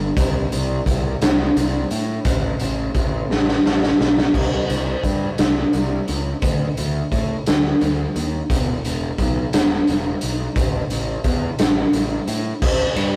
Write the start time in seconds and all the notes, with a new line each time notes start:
0.17 C2, kick, closed hi-hat
0.52 C2, closed hi-hat
0.86 C2, kick, closed hi-hat
1.22 C2, snare, closed hi-hat
1.56 C2, closed hi-hat
1.91 A2, closed hi-hat
2.25 A1, kick, closed hi-hat
2.60 A1, closed hi-hat
2.95 A1, kick, closed hi-hat
3.30 A1, snare
3.49 snare
3.66 A1, snare
3.83 snare
4.00 B1, snare
4.18 snare
4.34 C2, kick, crash
4.69 C2, closed hi-hat
5.04 G2, kick, closed hi-hat
5.38 C2, snare, closed hi-hat
5.73 C2, closed hi-hat
6.08 C#2, closed hi-hat
6.42 D2, kick, closed hi-hat
6.77 D2, closed hi-hat
7.12 A2, kick, closed hi-hat
7.46 D2, snare, closed hi-hat
7.81 D2, closed hi-hat
8.16 D#2, closed hi-hat
8.50 E1, kick, closed hi-hat
8.85 E1, closed hi-hat
9.18 B1, kick, closed hi-hat
9.53 E1, snare, closed hi-hat
9.87 E1, closed hi-hat
10.21 B1, closed hi-hat
10.56 A1, kick, closed hi-hat
10.90 A1, closed hi-hat
11.24 E2, kick, closed hi-hat
11.59 A1, snare, closed hi-hat
11.93 A1, closed hi-hat
12.28 A2, closed hi-hat
12.62 A1, kick, crash
12.96 G2, ride